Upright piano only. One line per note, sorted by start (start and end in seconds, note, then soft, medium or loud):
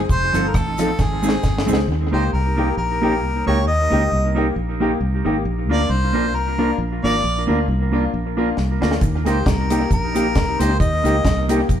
0.34 0.49 D#4 medium
0.34 0.50 F4 medium
0.34 0.50 A4 loud
0.79 0.94 D#4 medium
0.79 0.94 F4 medium
0.79 0.95 A4 loud
1.00 1.04 D#4 soft
1.00 1.04 G#4 soft
1.24 1.39 C4 medium
1.24 1.39 D#4 medium
1.24 1.39 G#4 loud
1.68 1.83 C4 medium
1.68 1.83 D#4 medium
1.68 1.84 G#4 loud
2.13 2.28 A#3 medium
2.13 2.28 D#4 medium
2.13 2.28 G4 medium
2.58 2.73 A#3 medium
2.58 2.73 D#4 medium
2.58 2.73 G4 loud
3.03 3.18 A#3 medium
3.03 3.18 D#4 medium
3.03 3.18 G4 loud
3.48 3.62 A#3 medium
3.48 3.62 D#4 medium
3.48 3.63 G4 loud
3.92 4.07 A#3 medium
3.92 4.07 D#4 medium
3.92 4.07 G4 loud
4.12 4.17 D#4 soft
4.12 4.17 G4 soft
4.36 4.51 A#3 medium
4.36 4.51 D#4 medium
4.36 4.52 G4 medium
4.81 4.96 A#3 medium
4.81 4.96 D#4 medium
4.81 4.96 G4 loud
5.25 5.40 A#3 medium
5.25 5.40 D#4 medium
5.25 5.41 G4 loud
5.70 5.85 A#3 medium
5.70 5.85 D4 medium
5.70 5.85 F4 loud
5.90 5.95 D4 soft
5.90 5.95 F4 soft
6.15 6.29 A#3 medium
6.15 6.30 D4 medium
6.15 6.30 F4 loud
6.59 6.74 A#3 medium
6.59 6.74 D4 medium
6.59 6.75 F4 loud
7.04 7.19 A#3 medium
7.04 7.19 D4 medium
7.04 7.19 F4 loud
7.49 7.63 A#3 medium
7.49 7.64 D4 medium
7.49 7.64 F4 loud
7.69 7.73 D4 soft
7.69 7.73 F4 soft
7.93 8.08 A#3 medium
7.93 8.08 D4 medium
7.93 8.08 F4 loud
8.37 8.52 A#3 medium
8.37 8.52 D4 medium
8.37 8.53 F4 loud
8.82 8.97 A#3 medium
8.82 8.97 D4 medium
8.82 8.97 F4 loud
9.26 9.41 A#3 medium
9.26 9.41 D#4 medium
9.26 9.41 G4 loud
9.46 9.51 D#4 soft
9.46 9.51 G4 soft
9.70 9.85 A#3 medium
9.70 9.86 D#4 medium
9.70 9.86 G4 medium
10.15 10.30 A#3 medium
10.15 10.30 D#4 medium
10.15 10.30 G4 medium
10.60 10.75 A#3 medium
10.60 10.75 D#4 medium
10.60 10.75 G4 medium
11.04 11.19 A#3 medium
11.04 11.20 D#4 medium
11.04 11.20 G4 medium
11.50 11.64 A#3 loud
11.50 11.64 D#4 medium
11.50 11.65 G4 loud